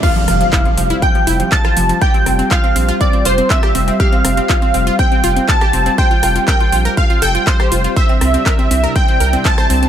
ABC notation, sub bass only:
X:1
M:4/4
L:1/8
Q:1/4=121
K:F
V:1 name="Sub bass" clef=bass
z F,,, z F,,, z F,,, z F,,, | z F,,, z B,,, z F,,, z F,,, | z F,,, z F,,, z F,,, z F,,, | z F,,, z B,,, z F,,, z F,,, |
z C,, z C,, z C,, z C,, |]